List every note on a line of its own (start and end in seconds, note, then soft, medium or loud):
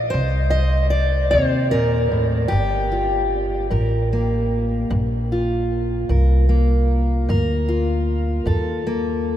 0.00 0.11 A#1 medium
0.00 0.49 D#5 loud
0.10 0.86 C3 medium
0.10 1.30 C5 medium
0.14 1.30 C2 medium
0.50 0.90 D#5 loud
0.90 2.11 D5 medium
1.31 2.49 D#2 medium
1.31 1.73 C3 medium
1.31 1.71 C5 medium
1.71 2.11 A#2 medium
1.71 2.52 A#4 medium
2.12 2.50 A2 medium
2.48 3.68 G1 medium
2.48 3.23 G2 medium
2.48 3.70 G4 medium
2.92 5.30 F4 soft
3.70 4.87 A1 medium
3.70 4.43 G2 medium
3.70 6.10 A#4 soft
4.13 6.49 A#3 soft
4.90 6.06 A#1 medium
4.90 5.62 G2 medium
5.32 7.24 F4 soft
6.09 7.24 C2 medium
6.09 6.81 G2 medium
6.09 7.29 A#4 soft
6.49 8.86 A#3 soft
7.29 8.43 D2 medium
7.29 8.00 G2 medium
7.29 8.46 A#4 medium
7.69 9.37 F4 medium
8.46 9.37 D#2 medium
8.46 9.18 G2 medium
8.46 9.37 A4 medium
8.87 9.37 A#3 medium